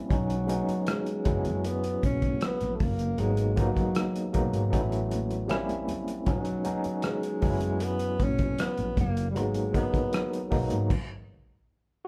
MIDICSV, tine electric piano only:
0, 0, Header, 1, 2, 480
1, 0, Start_track
1, 0, Tempo, 771208
1, 62, Time_signature, 4, 2, 24, 8
1, 7517, End_track
2, 0, Start_track
2, 0, Title_t, "Tine electric piano"
2, 0, Program_c, 0, 4
2, 0, Control_c, 0, 64, 127
2, 0, Note_on_c, 0, 55, 88
2, 0, Note_on_c, 0, 58, 78
2, 0, Note_on_c, 0, 60, 76
2, 0, Note_on_c, 0, 61, 83
2, 0, Note_on_c, 0, 64, 94
2, 58, Note_on_c, 0, 54, 72
2, 63, Note_on_c, 0, 56, 62
2, 67, Note_on_c, 0, 59, 59
2, 69, Control_c, 0, 64, 0
2, 70, Note_off_c, 0, 61, 0
2, 70, Note_off_c, 0, 64, 0
2, 70, Note_on_c, 0, 61, 67
2, 72, Note_off_c, 0, 58, 0
2, 74, Note_off_c, 0, 60, 0
2, 75, Note_off_c, 0, 55, 0
2, 77, Note_on_c, 0, 63, 78
2, 184, Control_c, 0, 64, 127
2, 227, Note_off_c, 0, 54, 0
2, 230, Note_off_c, 0, 56, 0
2, 231, Note_off_c, 0, 59, 0
2, 233, Note_off_c, 0, 61, 0
2, 236, Note_off_c, 0, 63, 0
2, 291, Note_on_c, 0, 54, 67
2, 293, Note_on_c, 0, 56, 62
2, 298, Note_on_c, 0, 59, 65
2, 304, Note_on_c, 0, 61, 69
2, 308, Note_on_c, 0, 63, 82
2, 631, Note_off_c, 0, 54, 0
2, 632, Note_off_c, 0, 56, 0
2, 634, Note_off_c, 0, 59, 0
2, 638, Note_off_c, 0, 61, 0
2, 639, Note_off_c, 0, 63, 0
2, 778, Note_on_c, 0, 54, 73
2, 780, Note_on_c, 0, 56, 67
2, 786, Note_on_c, 0, 59, 64
2, 788, Note_on_c, 0, 61, 71
2, 791, Control_c, 0, 64, 0
2, 791, Note_on_c, 0, 64, 79
2, 889, Control_c, 0, 64, 127
2, 1550, Note_off_c, 0, 54, 0
2, 1551, Note_off_c, 0, 56, 0
2, 1554, Note_off_c, 0, 59, 0
2, 1555, Note_off_c, 0, 61, 0
2, 1556, Note_off_c, 0, 64, 0
2, 1977, Note_on_c, 0, 54, 72
2, 1981, Note_on_c, 0, 56, 67
2, 1987, Note_on_c, 0, 58, 67
2, 1990, Note_on_c, 0, 59, 70
2, 1993, Control_c, 0, 64, 0
2, 1994, Note_on_c, 0, 63, 84
2, 2089, Control_c, 0, 64, 127
2, 2148, Note_off_c, 0, 54, 0
2, 2150, Note_off_c, 0, 56, 0
2, 2153, Note_off_c, 0, 58, 0
2, 2155, Note_off_c, 0, 59, 0
2, 2156, Note_off_c, 0, 63, 0
2, 2214, Note_on_c, 0, 54, 75
2, 2215, Note_on_c, 0, 56, 68
2, 2217, Note_on_c, 0, 58, 70
2, 2222, Note_on_c, 0, 59, 70
2, 2228, Note_on_c, 0, 63, 85
2, 2554, Note_off_c, 0, 54, 0
2, 2554, Note_off_c, 0, 56, 0
2, 2555, Note_off_c, 0, 58, 0
2, 2557, Note_off_c, 0, 59, 0
2, 2560, Note_off_c, 0, 63, 0
2, 2693, Note_on_c, 0, 54, 69
2, 2696, Note_on_c, 0, 56, 68
2, 2698, Note_on_c, 0, 58, 71
2, 2702, Note_on_c, 0, 59, 65
2, 2709, Note_on_c, 0, 63, 78
2, 2920, Note_off_c, 0, 54, 0
2, 2927, Note_on_c, 0, 54, 72
2, 2928, Note_off_c, 0, 59, 0
2, 2930, Note_on_c, 0, 57, 74
2, 2935, Note_off_c, 0, 63, 0
2, 2935, Note_on_c, 0, 59, 68
2, 2938, Note_on_c, 0, 61, 72
2, 2941, Note_off_c, 0, 56, 0
2, 2942, Note_off_c, 0, 58, 0
2, 2942, Note_on_c, 0, 63, 76
2, 2955, Control_c, 0, 64, 0
2, 2984, Note_off_c, 0, 63, 0
2, 2984, Note_on_c, 0, 64, 84
2, 3069, Control_c, 0, 64, 127
2, 3321, Note_off_c, 0, 54, 0
2, 3322, Note_off_c, 0, 57, 0
2, 3324, Note_off_c, 0, 59, 0
2, 3326, Note_off_c, 0, 61, 0
2, 3349, Note_off_c, 0, 64, 0
2, 3410, Note_on_c, 0, 55, 86
2, 3416, Note_on_c, 0, 58, 85
2, 3417, Note_on_c, 0, 60, 74
2, 3422, Note_on_c, 0, 61, 87
2, 3426, Note_on_c, 0, 64, 99
2, 3434, Control_c, 0, 64, 0
2, 3526, Control_c, 0, 64, 127
2, 3801, Note_off_c, 0, 55, 0
2, 3805, Note_off_c, 0, 58, 0
2, 3805, Note_off_c, 0, 60, 0
2, 3808, Note_off_c, 0, 61, 0
2, 3810, Note_off_c, 0, 64, 0
2, 3895, Note_on_c, 0, 54, 79
2, 3900, Note_on_c, 0, 56, 63
2, 3903, Note_on_c, 0, 59, 66
2, 3905, Note_on_c, 0, 61, 63
2, 3909, Note_on_c, 0, 63, 78
2, 3914, Control_c, 0, 64, 0
2, 4040, Control_c, 0, 64, 127
2, 4067, Note_off_c, 0, 54, 0
2, 4070, Note_off_c, 0, 56, 0
2, 4071, Note_off_c, 0, 59, 0
2, 4072, Note_off_c, 0, 61, 0
2, 4074, Note_off_c, 0, 63, 0
2, 4132, Note_on_c, 0, 54, 68
2, 4136, Note_on_c, 0, 56, 62
2, 4136, Note_on_c, 0, 59, 63
2, 4141, Note_on_c, 0, 61, 71
2, 4147, Note_on_c, 0, 63, 81
2, 4472, Note_off_c, 0, 54, 0
2, 4474, Note_off_c, 0, 56, 0
2, 4474, Note_off_c, 0, 59, 0
2, 4477, Note_off_c, 0, 61, 0
2, 4480, Note_off_c, 0, 63, 0
2, 4613, Note_on_c, 0, 54, 75
2, 4615, Note_on_c, 0, 56, 66
2, 4620, Note_on_c, 0, 59, 69
2, 4622, Note_on_c, 0, 61, 75
2, 4625, Note_on_c, 0, 63, 66
2, 4633, Control_c, 0, 64, 0
2, 4666, Note_off_c, 0, 63, 0
2, 4668, Note_on_c, 0, 64, 85
2, 4736, Control_c, 0, 64, 127
2, 5386, Note_off_c, 0, 54, 0
2, 5387, Note_off_c, 0, 56, 0
2, 5389, Note_off_c, 0, 59, 0
2, 5390, Note_off_c, 0, 61, 0
2, 5413, Note_off_c, 0, 64, 0
2, 5817, Note_on_c, 0, 54, 75
2, 5820, Note_on_c, 0, 56, 70
2, 5822, Note_on_c, 0, 58, 70
2, 5828, Note_on_c, 0, 59, 70
2, 5830, Note_on_c, 0, 63, 81
2, 5831, Control_c, 0, 64, 0
2, 5935, Control_c, 0, 64, 127
2, 5986, Note_off_c, 0, 54, 0
2, 5988, Note_off_c, 0, 56, 0
2, 5989, Note_off_c, 0, 58, 0
2, 5992, Note_off_c, 0, 59, 0
2, 5993, Note_off_c, 0, 63, 0
2, 6053, Note_on_c, 0, 54, 70
2, 6059, Note_on_c, 0, 56, 69
2, 6064, Note_on_c, 0, 70, 60
2, 6066, Note_on_c, 0, 59, 62
2, 6068, Note_on_c, 0, 63, 76
2, 6391, Note_off_c, 0, 54, 0
2, 6394, Note_off_c, 0, 56, 0
2, 6396, Note_off_c, 0, 70, 0
2, 6397, Note_off_c, 0, 59, 0
2, 6399, Note_off_c, 0, 63, 0
2, 6537, Note_on_c, 0, 54, 73
2, 6539, Note_on_c, 0, 56, 64
2, 6541, Note_on_c, 0, 58, 69
2, 6546, Note_on_c, 0, 59, 65
2, 6550, Note_on_c, 0, 63, 83
2, 6779, Note_off_c, 0, 54, 0
2, 6780, Note_off_c, 0, 56, 0
2, 6780, Note_off_c, 0, 58, 0
2, 6783, Note_off_c, 0, 59, 0
2, 6785, Note_off_c, 0, 63, 0
2, 6788, Control_c, 0, 64, 0
2, 7517, End_track
0, 0, End_of_file